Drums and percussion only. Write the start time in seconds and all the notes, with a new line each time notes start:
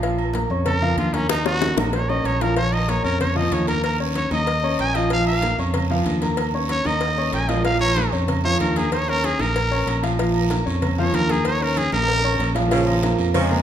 0.02 cowbell, high conga, low agogo
0.18 high conga, low agogo
0.33 cowbell, high conga
0.50 high conga, low agogo
0.66 cowbell, high conga, low conga, low agogo
0.82 high conga, low conga
0.98 cowbell, high conga, low agogo
1.14 cowbell, high conga, low agogo
1.29 cowbell, high bongo, low agogo
1.45 high bongo, high conga
1.61 cowbell, high bongo, high conga, high timbale, low agogo
1.77 low bongo, high conga, high timbale, low agogo
1.93 cowbell, high conga, low timbale
2.09 high conga, low timbale, low agogo
2.25 cowbell, high conga, low timbale, low agogo
2.41 cowbell, low bongo, high conga, low timbale
2.56 cowbell, high conga, low agogo, long guiro
2.73 high conga, low agogo
2.88 cowbell, high conga, short guiro
3.04 high conga, low agogo, short guiro
3.20 cowbell, high conga, low conga, low agogo, long guiro
3.36 high conga, low conga
3.52 cowbell, high conga, low timbale, low agogo, short guiro
3.67 cowbell, high conga, low agogo, short guiro
3.83 cowbell, high conga, low agogo, long guiro
4.00 high conga
4.15 cowbell, high conga, low agogo, short guiro
4.31 high conga, low agogo, short guiro
4.47 cowbell, high conga, long guiro
4.62 high conga, low agogo
4.79 cowbell, high conga, low timbale, low agogo, short guiro
4.95 cowbell, high conga, short guiro
5.10 cowbell, high conga, low agogo, long guiro
5.26 high conga, low agogo
5.42 cowbell, high conga, short guiro
5.58 high conga, low agogo, short guiro
5.74 cowbell, high conga, low conga, low agogo, long guiro
5.90 high conga, low conga
6.06 cowbell, high conga, low timbale, low agogo, short guiro
6.22 cowbell, high conga, low agogo, short guiro
6.37 cowbell, high conga, low agogo, long guiro
6.53 high conga
6.69 cowbell, high conga, low agogo, short guiro
6.85 high conga, low agogo, short guiro
7.01 cowbell, high conga, high timbale, long guiro
7.17 high conga, high timbale, low agogo
7.32 cowbell, high conga, low timbale, low agogo, short guiro
7.48 cowbell, high conga, low timbale, short guiro
7.64 cowbell, high conga, low agogo, long guiro
7.80 high conga, low agogo
7.96 cowbell, high conga, short guiro
8.12 low agogo, short guiro
8.28 cowbell, high conga, low conga, low agogo, long guiro
8.44 high conga
8.60 cowbell, high conga, low timbale, low agogo, short guiro
8.76 cowbell, high conga, low agogo, short guiro
8.92 cowbell, high conga, low agogo, long guiro
9.08 high conga
9.23 cowbell, high conga, low agogo, short guiro
9.39 high conga, low agogo, short guiro
9.56 cowbell, high conga, long guiro
9.71 high conga, low agogo
9.87 cowbell, high conga, low agogo, short guiro
10.03 cowbell, high conga, short guiro
10.19 cowbell, high conga, low agogo, long guiro
10.34 high conga, low agogo
10.50 cowbell, high conga, short guiro
10.67 high conga, low agogo, short guiro
10.82 cowbell, high conga, low conga, low agogo, long guiro
10.98 high conga, low conga
11.14 cowbell, high conga, low agogo, short guiro
11.29 cowbell, high conga, low agogo, short guiro
11.45 cowbell, high conga, low agogo, long guiro
11.61 high conga
11.77 cowbell, high conga, low agogo, short guiro
11.92 high conga, high timbale, low agogo, short guiro
12.03 high timbale
12.08 cowbell, high conga, long guiro
12.13 high timbale
12.24 high conga, low agogo
12.34 low timbale
12.39 cowbell, high conga, low agogo, short guiro
12.55 cowbell, high conga, low timbale, short guiro
12.66 low timbale
12.71 cowbell, high conga, low agogo, long guiro
12.87 high conga, low agogo
13.03 cowbell, high conga, short guiro
13.18 high conga, low agogo, short guiro
13.34 cowbell, high conga, low conga, low agogo, long guiro
13.51 high conga, low conga